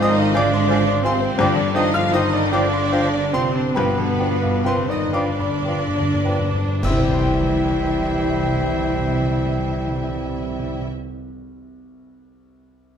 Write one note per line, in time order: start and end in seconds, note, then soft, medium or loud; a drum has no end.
0.00 1.39 G#1 loud
0.00 1.35 G#2 loud
0.00 0.34 D#3 loud
0.00 0.16 F3 medium
0.00 1.42 G#3 medium
0.00 1.20 C4 medium
0.00 0.34 D#4 medium
0.00 0.34 D#4 loud
0.00 0.35 D#4 loud
0.00 0.12 F4 medium
0.00 0.16 C5 medium
0.00 0.29 C5 medium
0.00 0.38 D5 medium
0.00 0.34 D#5 loud
0.00 0.35 D#5 loud
0.00 0.34 D#5 medium
0.00 0.35 F5 medium
0.00 1.41 G5 medium
0.00 0.08 G#5 medium
0.00 0.37 D6 loud
0.00 0.33 D#6 loud
0.00 1.42 F6 loud
0.00 1.42 G6 loud
0.19 0.46 F4 medium
0.32 1.04 D3 loud
0.32 0.51 F3 medium
0.32 1.03 D4 loud
0.32 1.05 D4 loud
0.32 0.50 C5 medium
0.32 1.04 D5 loud
0.32 0.62 F5 loud
0.32 0.42 G#5 medium
0.37 1.02 D5 medium
0.37 1.01 D6 loud
0.54 0.81 C6 medium
0.68 0.85 F3 medium
0.68 0.84 C5 medium
0.68 0.98 F5 medium
0.68 0.78 G#5 medium
0.87 1.05 C5 medium
1.02 1.39 C3 loud
1.02 1.20 F3 medium
1.02 1.38 C4 medium
1.02 1.40 C4 medium
1.02 1.39 C4 medium
1.02 1.33 F4 medium
1.02 1.38 C5 medium
1.02 1.20 C5 medium
1.02 1.39 C5 loud
1.02 1.12 G#5 medium
1.02 1.38 C6 loud
1.07 1.38 C5 medium
1.20 1.39 C4 medium
1.38 6.47 G1 medium
1.38 3.72 G2 loud
1.38 1.75 D3 loud
1.38 1.55 F3 medium
1.38 1.75 D4 loud
1.38 1.74 D4 loud
1.38 1.75 D4 loud
1.38 1.54 C5 medium
1.38 1.75 D5 medium
1.38 1.76 D5 medium
1.38 1.74 D5 medium
1.38 1.48 G5 medium
1.38 1.74 G5 medium
1.38 1.74 D6 loud
1.56 1.86 D3 medium
1.74 1.94 D#3 medium
1.74 1.92 F3 medium
1.74 2.05 D4 medium
1.74 1.93 D#4 medium
1.74 1.94 D#4 medium
1.74 1.96 D#4 loud
1.74 1.90 C5 medium
1.74 1.94 D#5 loud
1.74 1.94 D#5 medium
1.74 1.84 G5 medium
1.74 1.93 D#6 loud
1.93 2.13 F3 loud
1.93 2.12 F4 medium
1.93 2.25 F4 medium
1.93 2.13 F4 loud
1.93 2.14 F4 medium
1.93 2.13 F5 medium
1.93 2.14 F5 loud
1.93 2.12 F6 loud
2.12 2.53 D#3 medium
2.12 2.30 F3 medium
2.12 2.51 D#4 loud
2.12 2.52 D#4 loud
2.12 2.29 C5 medium
2.12 2.45 C5 medium
2.12 2.53 D#5 loud
2.12 2.53 D#5 medium
2.12 2.51 D#5 medium
2.12 2.23 G5 medium
2.12 2.50 D#6 loud
2.33 2.53 D5 medium
2.51 3.33 D3 loud
2.51 2.69 F3 medium
2.51 3.34 D4 medium
2.51 3.17 D4 loud
2.51 3.34 D4 loud
2.51 2.68 C5 medium
2.51 3.34 D5 loud
2.51 3.12 D5 medium
2.51 2.85 F5 medium
2.51 2.61 G5 medium
2.51 3.31 G5 medium
2.51 3.30 D6 loud
2.73 3.05 C6 medium
2.92 3.09 F3 medium
2.92 3.08 C5 medium
2.92 3.25 F5 medium
2.92 3.01 G5 medium
3.14 3.46 D5 medium
3.33 3.76 C3 medium
3.33 3.50 F3 medium
3.33 3.62 C4 medium
3.33 3.76 C4 loud
3.33 3.75 C4 medium
3.33 3.49 C5 medium
3.33 3.76 C5 medium
3.33 3.67 C5 medium
3.33 3.76 C5 medium
3.33 3.43 G5 medium
3.33 3.73 C6 loud
3.55 3.76 D4 medium
3.74 3.84 G2 soft
3.74 6.80 G2 loud
3.74 4.65 B2 medium
3.74 3.93 F3 medium
3.74 4.66 B3 loud
3.74 4.65 B3 loud
3.74 4.65 B3 medium
3.74 3.91 B4 medium
3.74 4.65 B4 medium
3.74 4.64 B4 loud
3.74 4.62 B4 medium
3.74 3.84 G5 medium
3.74 4.62 G5 medium
3.74 4.62 B5 loud
3.85 3.94 G2 soft
3.95 4.03 G2 soft
3.95 4.34 D3 medium
4.04 4.13 G2 soft
4.14 4.23 G2 soft
4.18 4.36 F3 medium
4.18 4.57 D4 medium
4.18 4.34 B4 medium
4.18 4.29 G5 medium
4.24 4.32 G2 soft
4.34 4.43 G2 soft
4.42 4.53 G2 medium
4.42 4.80 F4 medium
4.54 4.62 G2 medium
4.63 4.73 G2 soft
4.63 4.89 C3 medium
4.63 4.82 F3 medium
4.63 4.90 C4 medium
4.63 4.89 C4 medium
4.63 4.90 C4 medium
4.63 4.80 B4 medium
4.63 5.04 B4 medium
4.63 4.89 C5 medium
4.63 4.90 C5 medium
4.63 4.75 G5 medium
4.63 4.88 C6 loud
4.68 4.89 C5 medium
4.74 4.83 G2 medium
4.84 4.93 G2 medium
4.88 5.14 D#3 medium
4.88 5.14 D#4 medium
4.88 5.15 D#4 medium
4.88 5.14 D#4 medium
4.88 5.14 D5 medium
4.88 5.14 D#5 medium
4.88 5.13 D#6 medium
4.94 5.04 G2 medium
5.05 5.15 G2 medium
5.13 5.26 G2 medium
5.13 6.83 D3 medium
5.13 5.30 F3 medium
5.13 6.83 D4 medium
5.13 5.29 B4 medium
5.13 6.83 D5 medium
5.13 5.95 D5 medium
5.13 6.84 D5 medium
5.13 5.56 F5 medium
5.13 5.25 G5 medium
5.13 5.39 B5 medium
5.13 6.80 D6 medium
5.27 5.37 G2 medium
5.39 5.48 G2 medium
5.39 5.84 B5 medium
5.50 5.61 G2 medium
5.62 5.73 G2 medium
5.62 5.78 G5 medium
5.66 5.84 F3 medium
5.66 5.82 B4 medium
5.66 6.14 F5 medium
5.75 5.86 G2 medium
5.88 5.99 G2 medium
5.96 6.12 G2 medium
5.96 6.44 D5 medium
6.13 6.24 G2 loud
6.23 6.37 G2 medium
6.23 6.42 F3 medium
6.23 6.39 B4 soft
6.23 6.73 B4 medium
6.23 6.38 G5 medium
6.39 6.51 G2 medium
6.52 6.64 G2 loud
6.52 6.84 D4 medium
6.65 6.76 G2 loud
6.82 10.86 C2 medium
6.82 6.91 C3 medium
6.82 10.86 E3 medium
6.82 10.87 G3 medium
6.82 10.85 E4 medium
6.82 10.86 E4 medium
6.82 10.87 E4 medium
6.82 10.84 C5 medium
6.82 10.87 E5 medium
6.82 10.88 E5 medium
6.82 10.84 G5 medium
6.82 10.87 E6 medium
6.82 concert bass drum medium
6.82 crash medium
6.86 10.88 C6 medium
6.90 10.93 C3 medium
6.90 6.98 C3 medium
6.97 7.06 C3 medium
6.97 11.00 C4 medium
7.04 7.13 C3 medium
7.04 11.07 G4 medium
7.11 7.20 C3 medium
7.11 11.14 C5 medium
7.19 7.28 C3 medium
7.19 11.21 G5 medium
7.28 7.35 C3 medium
7.35 7.42 C3 medium
7.43 7.50 C3 medium
7.51 7.57 C3 medium
7.57 7.65 C3 medium
7.65 7.72 C3 medium
7.72 7.79 C3 medium
7.87 7.94 C3 medium
7.94 8.01 C3 medium
8.01 8.08 C3 medium
8.08 8.15 C3 medium
8.15 8.22 C3 medium
8.22 8.30 C3 medium
8.30 8.36 C3 medium
8.36 8.43 C3 medium
8.43 8.50 C3 medium
8.50 8.58 C3 medium
8.58 8.65 C3 medium
8.65 8.72 C3 medium
8.72 8.79 C3 medium
8.79 8.86 C3 medium
8.86 8.94 C3 medium
9.01 9.08 C3 medium
9.08 9.15 C3 medium
9.15 9.22 C3 medium
9.22 9.30 C3 medium
9.30 9.37 C3 medium
9.37 9.45 C3 medium
9.45 9.52 C3 medium
9.52 9.59 C3 medium
9.66 9.74 C3 medium
9.74 9.81 C3 medium
9.81 9.88 C3 medium
9.88 9.95 C3 medium
9.95 10.02 C3 medium
10.02 10.09 C3 medium
10.09 10.16 C3 medium
10.16 10.23 C3 medium
10.23 10.29 C3 medium
10.29 10.37 C3 medium
10.37 10.44 C3 medium
10.44 10.51 C3 medium
10.51 10.58 C3 medium
10.59 10.67 C3 medium
10.67 10.74 C3 medium
10.74 10.81 C3 medium
10.81 10.88 C3 medium